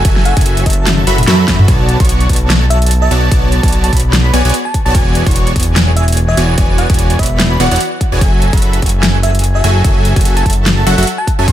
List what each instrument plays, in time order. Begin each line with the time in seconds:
0.05 analog synth bass F#1, supersaw synth F#3 F#4 A4 E5 G#5, digital synth lead G#5, kick, closed hi-hat
0.16 snare
0.25 fm electric piano F#5, closed hi-hat
0.37 analog synth bass F#1, supersaw synth F#3 F#4 A4 E5 G#5, digital synth lead G#5, kick, closed hi-hat
0.41 closed hi-hat
0.46 closed hi-hat
0.57 closed hi-hat
0.66 analog synth bass F#1, supersaw synth F#3 A4 E5 A5, fm electric piano E5, digital synth lead A5, kick, closed hi-hat
0.70 closed hi-hat
0.73 closed hi-hat
0.87 snare, closed hi-hat, high tom
0.98 high tom
1.07 analog synth bass F#1, supersaw synth F#3 F#4 A4 E5 B5, digital synth lead B5, closed hi-hat
1.18 closed hi-hat, mid tom
1.23 closed hi-hat
1.27 analog synth bass F#2, supersaw synth F#3 F#4 A4 E5 B5, digital synth lead B5, snare, closed hi-hat
1.48 analog synth bass F#2, supersaw synth F#3 F#4 A4 E5 B5, digital synth lead B5, kick, snare, closed hi-hat
1.59 mid tom
1.68 analog synth bass B1, supersaw synth B3 F#4 C#5 D5 A5, digital synth lead A5, kick, closed hi-hat
1.89 closed hi-hat
2.00 analog synth bass B1, supersaw synth B3 F#4 C#5 D5 C#6, digital synth lead C#6, kick, closed hi-hat
2.05 closed hi-hat
2.09 closed hi-hat
2.21 closed hi-hat
2.29 analog synth bass B1, supersaw synth B3 F#4 C#5 D5 A5, digital synth lead A5, kick, closed hi-hat
2.33 closed hi-hat
2.36 closed hi-hat
2.50 snare, closed hi-hat
2.70 fm electric piano E5, closed hi-hat
2.82 closed hi-hat
2.86 closed hi-hat
2.91 closed hi-hat
3.02 fm electric piano E5
3.11 analog synth bass B1, supersaw synth B3 F#4 C#5 D5 A5, digital synth lead A5, closed hi-hat
3.31 analog synth bass B1, supersaw synth B3 F#4 C#5 D5 A5, digital synth lead A5, kick, closed hi-hat
3.52 closed hi-hat
3.63 analog synth bass B1, supersaw synth B3 F#4 C#5 D5 A5, digital synth lead A5, kick, closed hi-hat
3.68 closed hi-hat
3.73 closed hi-hat
3.84 fm electric piano A5, closed hi-hat
3.93 analog synth bass B1, supersaw synth B3 F#4 C#5 D5 B5, digital synth lead B5, kick, closed hi-hat
3.97 closed hi-hat
4.00 closed hi-hat
4.13 snare, closed hi-hat
4.33 analog synth bass B1, supersaw synth B3 F#4 C#5 D5 G#5, digital synth lead G#5, closed hi-hat
4.45 analog synth bass B1, supersaw synth B3 F#4 C#5 D5 G#5, digital synth lead G#5, closed hi-hat
4.49 closed hi-hat
4.54 closed hi-hat
4.65 fm electric piano A5
4.74 kick, closed hi-hat
4.86 analog synth bass B1, supersaw synth B3 F#4 C#5 D5 A5, fm electric piano A5, digital synth lead A5
4.95 analog synth bass E1, supersaw synth E3 B3 F#4 C#5 D5 G#5, digital synth lead G#5, kick, closed hi-hat
5.15 closed hi-hat
5.26 analog synth bass E1, supersaw synth E3 B3 F#4 C#5 D5 C#6, digital synth lead C#6, kick, closed hi-hat
5.31 closed hi-hat
5.36 closed hi-hat
5.47 closed hi-hat
5.56 analog synth bass E1, supersaw synth E3 B3 F#4 C#5 D5 G#5, digital synth lead G#5, kick, closed hi-hat
5.60 closed hi-hat
5.63 closed hi-hat
5.76 snare, closed hi-hat
5.97 fm electric piano E5, closed hi-hat
6.08 closed hi-hat
6.12 closed hi-hat
6.17 closed hi-hat
6.29 fm electric piano E5
6.37 analog synth bass E1, supersaw synth E3 B3 F#4 C#5 D5 G#5, digital synth lead G#5, closed hi-hat
6.58 analog synth bass E1, supersaw synth E3 B3 F#4 C#5 D5 G#5, digital synth lead G#5, kick, closed hi-hat
6.78 fm electric piano F#5, closed hi-hat
6.90 analog synth bass E1, supersaw synth E3 B3 F#4 C#5 D5 G#5, digital synth lead G#5, kick, closed hi-hat
6.94 closed hi-hat
6.99 closed hi-hat
7.10 closed hi-hat
7.19 analog synth bass E1, supersaw synth B3 F#4 C#5 D5 B5, fm electric piano E5, digital synth lead B5, kick, closed hi-hat
7.23 closed hi-hat
7.26 closed hi-hat
7.40 snare, closed hi-hat
7.60 analog synth bass E1, supersaw synth E3 B3 F#4 C#5 D5 F#5, digital synth lead F#5, closed hi-hat
7.71 analog synth bass E1, supersaw synth E3 B3 F#4 C#5 D5 F#5, digital synth lead F#5, closed hi-hat
7.76 closed hi-hat
7.81 closed hi-hat
8.01 kick, closed hi-hat
8.12 analog synth bass E1, supersaw synth E3 B3 F#4 C#5 D5 G#5, digital synth lead G#5
8.21 analog synth bass F#1, supersaw synth F#3 F#4 A4 E5 G#5, digital synth lead G#5, kick, closed hi-hat
8.42 closed hi-hat
8.53 analog synth bass F#1, supersaw synth F#3 F#4 A4 E5 B5, digital synth lead B5, kick, closed hi-hat
8.57 closed hi-hat
8.62 closed hi-hat
8.73 closed hi-hat
8.82 analog synth bass F#1, supersaw synth F#3 F#4 A4 E5 G#5, digital synth lead G#5, kick, closed hi-hat
8.86 closed hi-hat
8.89 closed hi-hat
9.03 snare, closed hi-hat
9.23 fm electric piano E5, closed hi-hat
9.35 closed hi-hat
9.39 closed hi-hat
9.44 closed hi-hat
9.55 fm electric piano E5
9.64 analog synth bass F#1, supersaw synth F#3 F#4 A4 E5 G#5, digital synth lead G#5, closed hi-hat
9.84 analog synth bass F#1, supersaw synth F#3 F#4 A4 E5 G#5, digital synth lead G#5, kick, closed hi-hat
10.05 closed hi-hat
10.16 analog synth bass F#1, supersaw synth F#3 F#4 A4 G#5, digital synth lead G#5, kick, closed hi-hat
10.21 closed hi-hat
10.25 closed hi-hat
10.37 fm electric piano A5, closed hi-hat
10.46 analog synth bass F#1, supersaw synth F#3 F#4 A4 E5, digital synth lead A5, kick, closed hi-hat
10.50 closed hi-hat
10.53 closed hi-hat
10.66 snare, closed hi-hat
10.86 analog synth bass F#1, supersaw synth F#3 F#4 A4 E5 F#5, digital synth lead F#5, closed hi-hat
10.98 analog synth bass F#1, supersaw synth F#3 F#4 A4 E5 F#5, digital synth lead F#5, closed hi-hat
11.03 closed hi-hat
11.07 closed hi-hat
11.18 fm electric piano A5
11.27 kick, closed hi-hat
11.39 analog synth bass F#2, supersaw synth F#3 F#4 A4 E5 G#5, digital synth lead G#5, fm electric piano A5
11.48 analog synth bass C#2, supersaw synth C#4 G#4 E5 C#6, digital synth lead C#6, kick, closed hi-hat